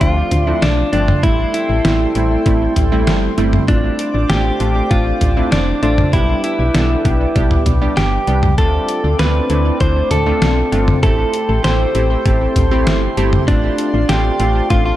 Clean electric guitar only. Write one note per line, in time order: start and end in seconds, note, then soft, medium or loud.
0.01 0.46 F4 loud
0.46 0.64 E4 loud
0.62 0.91 D4 medium
0.93 1.24 D4 medium
1.23 1.53 E4 loud
1.54 2.72 E4 medium
3.68 4.31 D4 loud
4.30 4.93 G4 loud
4.91 5.52 F4 loud
5.52 5.81 D4 medium
5.83 6.11 D4 medium
6.13 6.42 E4 loud
6.44 7.62 E4 medium
7.97 8.54 G4 medium
8.58 9.19 A4 loud
9.19 9.80 B4 loud
9.81 10.09 C5 loud
10.11 10.99 A4 loud
11.03 11.64 A4 loud
11.64 13.13 C5 medium
13.48 14.11 D4 loud
14.09 14.70 G4 loud
14.70 14.84 F4 loud
14.86 14.96 F4 medium